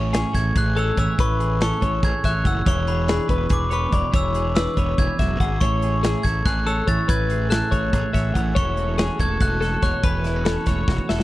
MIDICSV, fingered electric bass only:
0, 0, Header, 1, 2, 480
1, 0, Start_track
1, 0, Key_signature, 3, "major"
1, 0, Tempo, 421348
1, 1352, Time_signature, 7, 3, 24, 8
1, 12794, End_track
2, 0, Start_track
2, 0, Title_t, "Fingered electric bass"
2, 0, Program_c, 0, 33
2, 0, Note_on_c, 0, 33, 89
2, 263, Note_off_c, 0, 33, 0
2, 397, Note_on_c, 0, 33, 82
2, 592, Note_off_c, 0, 33, 0
2, 637, Note_on_c, 0, 33, 102
2, 1029, Note_off_c, 0, 33, 0
2, 1114, Note_on_c, 0, 33, 99
2, 1212, Note_off_c, 0, 33, 0
2, 1358, Note_on_c, 0, 33, 87
2, 1947, Note_off_c, 0, 33, 0
2, 2078, Note_on_c, 0, 33, 89
2, 2273, Note_off_c, 0, 33, 0
2, 2318, Note_on_c, 0, 33, 101
2, 2414, Note_off_c, 0, 33, 0
2, 2553, Note_on_c, 0, 33, 79
2, 2750, Note_off_c, 0, 33, 0
2, 2790, Note_on_c, 0, 30, 89
2, 2988, Note_off_c, 0, 30, 0
2, 3037, Note_on_c, 0, 28, 104
2, 3627, Note_off_c, 0, 28, 0
2, 3752, Note_on_c, 0, 28, 81
2, 3949, Note_off_c, 0, 28, 0
2, 3993, Note_on_c, 0, 28, 94
2, 4387, Note_off_c, 0, 28, 0
2, 4474, Note_on_c, 0, 28, 103
2, 4572, Note_off_c, 0, 28, 0
2, 4716, Note_on_c, 0, 28, 90
2, 5306, Note_off_c, 0, 28, 0
2, 5439, Note_on_c, 0, 28, 88
2, 5634, Note_off_c, 0, 28, 0
2, 5678, Note_on_c, 0, 28, 97
2, 5775, Note_off_c, 0, 28, 0
2, 5915, Note_on_c, 0, 28, 78
2, 6112, Note_off_c, 0, 28, 0
2, 6150, Note_on_c, 0, 32, 86
2, 6349, Note_off_c, 0, 32, 0
2, 6398, Note_on_c, 0, 33, 96
2, 6988, Note_off_c, 0, 33, 0
2, 7116, Note_on_c, 0, 33, 85
2, 7312, Note_off_c, 0, 33, 0
2, 7357, Note_on_c, 0, 33, 99
2, 7750, Note_off_c, 0, 33, 0
2, 7839, Note_on_c, 0, 33, 97
2, 7935, Note_off_c, 0, 33, 0
2, 8079, Note_on_c, 0, 33, 94
2, 8668, Note_off_c, 0, 33, 0
2, 8796, Note_on_c, 0, 33, 87
2, 8992, Note_off_c, 0, 33, 0
2, 9037, Note_on_c, 0, 33, 96
2, 9134, Note_off_c, 0, 33, 0
2, 9277, Note_on_c, 0, 33, 76
2, 9473, Note_off_c, 0, 33, 0
2, 9521, Note_on_c, 0, 33, 95
2, 9715, Note_off_c, 0, 33, 0
2, 9758, Note_on_c, 0, 28, 93
2, 10348, Note_off_c, 0, 28, 0
2, 10473, Note_on_c, 0, 28, 88
2, 10670, Note_off_c, 0, 28, 0
2, 10722, Note_on_c, 0, 28, 97
2, 11113, Note_off_c, 0, 28, 0
2, 11192, Note_on_c, 0, 28, 98
2, 11292, Note_off_c, 0, 28, 0
2, 11436, Note_on_c, 0, 28, 91
2, 12028, Note_off_c, 0, 28, 0
2, 12152, Note_on_c, 0, 28, 85
2, 12351, Note_off_c, 0, 28, 0
2, 12392, Note_on_c, 0, 28, 93
2, 12492, Note_off_c, 0, 28, 0
2, 12644, Note_on_c, 0, 28, 82
2, 12794, Note_off_c, 0, 28, 0
2, 12794, End_track
0, 0, End_of_file